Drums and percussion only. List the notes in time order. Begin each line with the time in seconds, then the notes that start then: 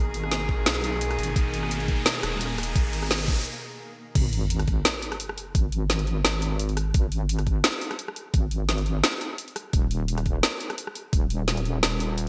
0.14 open hi-hat
0.24 cross-stick
0.32 snare, closed hi-hat
0.49 kick
0.66 snare, closed hi-hat
0.84 closed hi-hat
1.01 closed hi-hat
1.11 cross-stick, open hi-hat
1.19 closed hi-hat
1.23 closed hi-hat
1.36 kick, closed hi-hat
1.54 open hi-hat
1.63 cross-stick
1.71 closed hi-hat
1.80 open hi-hat
1.88 kick, open hi-hat
2.06 snare, closed hi-hat
2.23 cross-stick, closed hi-hat
2.41 closed hi-hat
2.58 cross-stick, closed hi-hat
2.63 closed hi-hat
2.76 kick, closed hi-hat
2.93 open hi-hat
3.02 cross-stick
3.11 snare, closed hi-hat
3.28 kick, open hi-hat
4.15 kick, closed hi-hat, crash
4.33 open hi-hat
4.50 closed hi-hat
4.59 cross-stick, open hi-hat
4.68 kick, open hi-hat
4.85 snare, closed hi-hat
5.02 closed hi-hat
5.12 cross-stick, open hi-hat
5.20 closed hi-hat
5.29 cross-stick
5.38 closed hi-hat
5.55 kick, closed hi-hat
5.72 open hi-hat
5.90 snare, closed hi-hat
5.99 open hi-hat
6.07 open hi-hat
6.25 cross-stick, snare, closed hi-hat
6.42 closed hi-hat
6.59 closed hi-hat
6.69 open hi-hat
6.77 cross-stick, closed hi-hat
6.94 kick, closed hi-hat
7.12 open hi-hat
7.29 closed hi-hat
7.39 cross-stick, open hi-hat
7.47 kick, open hi-hat
7.64 snare, closed hi-hat
7.81 closed hi-hat
7.91 cross-stick, open hi-hat
7.99 closed hi-hat
8.08 cross-stick
8.16 closed hi-hat
8.34 kick, closed hi-hat
8.51 open hi-hat
8.69 snare, closed hi-hat
8.78 open hi-hat
8.86 open hi-hat
9.04 cross-stick, snare, closed hi-hat
9.21 closed hi-hat
9.38 closed hi-hat
9.48 open hi-hat
9.56 cross-stick, closed hi-hat
9.73 kick, closed hi-hat
9.91 open hi-hat
10.08 closed hi-hat
10.18 cross-stick, open hi-hat
10.26 kick, open hi-hat
10.43 snare, closed hi-hat
10.60 closed hi-hat
10.70 cross-stick, open hi-hat
10.78 closed hi-hat
10.87 cross-stick
10.95 closed hi-hat
11.13 kick, closed hi-hat
11.30 open hi-hat
11.48 snare, closed hi-hat
11.57 open hi-hat
11.65 open hi-hat
11.83 cross-stick, snare, closed hi-hat
12.00 closed hi-hat
12.18 closed hi-hat